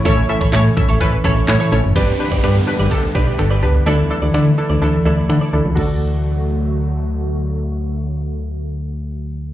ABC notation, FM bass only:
X:1
M:4/4
L:1/16
Q:1/4=126
K:D
V:1 name="FM bass" clef=bass
A,,,2 z A,,, A,,2 z A,,, A,,,2 A,,,2 A,, z A,,, F,,, | G,,,2 z G,,, G,,2 z G,,, z2 B,,,2 G,,,2 C,,2 | D,,2 z D,, D,2 z D,, D,,2 D,,2 D, z D,, C,, | D,,16- |
D,,16 |]